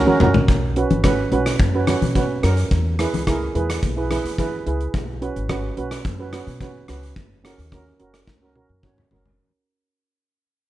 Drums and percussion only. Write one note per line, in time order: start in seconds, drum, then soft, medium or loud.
0.08 high conga medium
0.20 mid tom medium
0.20 low conga medium
0.34 floor tom medium
0.34 low conga medium
0.48 kick medium
0.48 closed hi-hat soft
0.76 closed hi-hat medium
0.91 closed hi-hat medium
0.91 high conga medium
1.04 kick medium
1.04 cross-stick medium
1.04 closed hi-hat soft
1.04 low conga medium
1.32 closed hi-hat medium
1.32 low conga medium
1.46 cross-stick medium
1.46 closed hi-hat soft
1.59 kick loud
1.59 closed hi-hat soft
1.87 cross-stick medium
1.87 closed hi-hat medium
1.87 high conga medium
2.02 closed hi-hat soft
2.02 high conga medium
2.15 kick medium
2.15 closed hi-hat soft
2.43 cross-stick medium
2.43 closed hi-hat medium
2.57 closed hi-hat medium
2.71 kick medium
2.71 closed hi-hat medium
2.99 cross-stick medium
2.99 closed hi-hat medium
3.14 closed hi-hat medium
3.14 high conga medium
3.27 kick medium
3.27 cross-stick medium
3.27 closed hi-hat soft
3.27 low conga medium
3.55 closed hi-hat medium
3.55 low conga medium
3.70 cross-stick medium
3.70 closed hi-hat medium
3.83 kick medium
3.83 closed hi-hat medium
4.11 cross-stick medium
4.11 closed hi-hat medium
4.11 high conga medium
4.26 closed hi-hat medium
4.38 kick medium
4.38 closed hi-hat medium
4.67 closed hi-hat medium
4.81 closed hi-hat soft
4.94 kick medium
4.94 closed hi-hat soft
5.22 closed hi-hat medium
5.36 closed hi-hat soft
5.49 kick medium
5.49 cross-stick medium
5.49 closed hi-hat soft
5.77 closed hi-hat medium
5.91 cross-stick medium
5.91 closed hi-hat soft
6.05 kick medium
6.05 closed hi-hat soft
6.33 cross-stick medium
6.33 closed hi-hat medium
6.47 closed hi-hat soft
6.60 kick medium
6.60 closed hi-hat soft
6.88 cross-stick medium
6.88 closed hi-hat medium
7.03 closed hi-hat soft
7.16 kick medium
7.16 closed hi-hat soft
7.45 cross-stick medium
7.45 closed hi-hat medium
7.59 closed hi-hat soft
7.72 kick medium
7.72 cross-stick medium
7.72 closed hi-hat soft
8.00 closed hi-hat medium
8.14 cross-stick medium
8.14 closed hi-hat soft
8.27 kick medium
8.27 snare soft
8.55 high tom soft
8.83 kick medium
8.83 mid tom medium
8.98 mid tom medium
9.11 floor tom medium
9.26 floor tom medium